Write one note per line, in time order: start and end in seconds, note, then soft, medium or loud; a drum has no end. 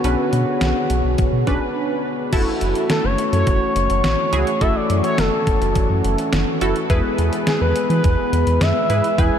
0.00 2.29 D3 medium
0.00 2.29 B3 medium
0.00 2.05 F#4 loud
0.00 2.29 C#5 medium
0.04 0.16 B1 loud
0.04 0.77 C#4 medium
0.04 0.77 D4 medium
0.04 2.30 G#4 medium
0.04 0.77 B4 medium
0.04 closed hi-hat medium
0.33 0.45 B2 loud
0.33 closed hi-hat medium
0.61 0.73 B1 loud
0.61 snare loud
0.61 closed hi-hat medium
0.90 1.02 B1 loud
0.90 closed hi-hat medium
1.04 1.16 B1 medium
1.18 1.31 B1 loud
1.18 kick medium
1.18 closed hi-hat medium
1.33 1.45 B2 loud
1.47 1.59 B1 loud
1.47 2.02 C#4 medium
1.47 2.02 D4 medium
1.47 2.02 B4 loud
1.47 kick medium
1.47 closed hi-hat medium
2.33 2.45 F#1 loud
2.33 9.39 E3 medium
2.33 6.86 A3 medium
2.33 6.86 C#4 medium
2.33 3.05 E4 medium
2.33 3.05 F#4 medium
2.33 6.86 F#4 medium
2.33 3.05 A4 loud
2.33 kick loud
2.33 closed hi-hat medium
2.33 crash medium
2.61 2.73 F#1 medium
2.61 closed hi-hat medium
2.75 closed hi-hat medium
2.90 3.06 A4 medium
2.90 snare loud
2.90 closed hi-hat medium
3.04 3.16 F#1 loud
3.04 3.32 C#5 medium
3.18 closed hi-hat medium
3.33 3.45 F#2 medium
3.33 3.46 C#5 medium
3.33 closed hi-hat soft
3.47 3.59 F#1 loud
3.47 4.63 C#5 loud
3.47 kick medium
3.47 closed hi-hat medium
3.76 3.88 F#1 loud
3.76 closed hi-hat medium
3.90 4.02 F#1 medium
3.90 closed hi-hat medium
4.04 4.16 A1 loud
4.04 snare loud
4.04 closed hi-hat medium
4.33 4.45 C#2 medium
4.33 4.51 E4 medium
4.33 4.51 F#4 medium
4.33 4.51 G#4 loud
4.33 closed hi-hat medium
4.47 closed hi-hat medium
4.61 4.73 F#1 loud
4.61 5.34 E4 medium
4.61 5.34 F#4 medium
4.61 5.34 A4 medium
4.61 4.77 E5 loud
4.61 kick loud
4.61 closed hi-hat medium
4.76 5.04 D5 loud
4.90 5.02 F#2 loud
4.90 closed hi-hat medium
5.04 5.20 C#5 loud
5.04 closed hi-hat medium
5.18 5.30 F#1 loud
5.18 6.33 A4 loud
5.18 snare loud
5.18 closed hi-hat medium
5.47 5.59 F#1 medium
5.47 kick medium
5.47 closed hi-hat medium
5.61 5.73 F#1 loud
5.61 closed hi-hat medium
5.75 5.88 F#1 loud
5.75 kick medium
5.75 closed hi-hat medium
5.90 6.02 F#2 medium
6.04 6.16 F#1 loud
6.04 closed hi-hat medium
6.18 closed hi-hat medium
6.33 6.45 F#1 loud
6.33 snare loud
6.33 closed hi-hat medium
6.61 6.73 F#1 medium
6.61 6.80 E4 medium
6.61 6.80 F#4 medium
6.61 6.80 A4 loud
6.61 closed hi-hat medium
6.76 closed hi-hat medium
6.90 7.02 E2 loud
6.90 9.39 G#3 medium
6.90 9.16 B3 medium
6.90 7.63 E4 medium
6.90 9.39 G#4 medium
6.90 7.63 G#4 medium
6.90 7.63 B4 loud
6.90 kick loud
6.90 closed hi-hat medium
7.18 7.31 E2 loud
7.18 closed hi-hat medium
7.33 closed hi-hat medium
7.47 7.60 G#4 medium
7.47 snare loud
7.47 closed hi-hat medium
7.61 7.73 E2 loud
7.61 7.88 B4 medium
7.76 closed hi-hat medium
7.90 8.02 E3 loud
7.90 8.03 B4 medium
7.90 closed hi-hat medium
8.04 8.16 E2 loud
8.04 8.63 B4 medium
8.04 kick medium
8.04 closed hi-hat medium
8.33 8.45 E2 loud
8.33 closed hi-hat medium
8.47 8.59 E2 loud
8.47 closed hi-hat medium
8.61 8.73 F#2 loud
8.61 9.20 E5 loud
8.61 snare loud
8.61 closed hi-hat medium
8.90 9.02 G#2 loud
8.90 9.08 E4 medium
8.90 9.08 G#4 medium
8.90 9.08 B4 medium
8.90 closed hi-hat medium
9.04 closed hi-hat medium
9.18 9.31 E2 loud
9.18 9.39 C#4 medium
9.18 9.39 E4 medium
9.18 9.39 G#4 medium
9.18 9.39 B4 medium
9.18 9.39 G#5 loud
9.18 kick loud
9.18 closed hi-hat medium